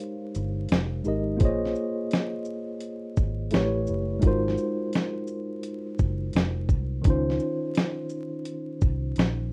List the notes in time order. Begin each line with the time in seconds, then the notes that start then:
Already playing: G#3 D#4 G4 A#4 C5 C#5 F5
0.35 G1, closed hi-hat, shaker
0.69 F1, snare, closed hi-hat
1.04 G#1 G#3 D#4 G4 A#4, shaker
1.08 D#5
1.37 A#3 F4 G#4, kick, closed hi-hat
1.41 A#1 C5 C#5 D#5
1.65 snare
1.75 shaker
2.11 snare, closed hi-hat
2.45 shaker
2.80 closed hi-hat
3.17 G#1, kick, shaker
3.51 A1 A3 E4 G4 B4, snare, closed hi-hat
3.55 C#5
3.87 F#1, shaker
4.19 G#1 G#3 D#4 F4, kick, closed hi-hat
4.24 F#4 A#4 C5
4.48 snare
4.58 shaker
4.93 snare, closed hi-hat
5.27 shaker
5.63 closed hi-hat
5.99 F#1, kick, shaker
6.33 F1, snare, closed hi-hat
6.69 C2, kick, shaker
7.02 C#2 D#3 C#4, kick, closed hi-hat
7.06 D#4 F4
7.10 C5
7.30 snare
7.40 shaker
7.75 snare, closed hi-hat
8.09 shaker
8.45 closed hi-hat
8.81 C2, kick, shaker
9.16 A#1, snare, closed hi-hat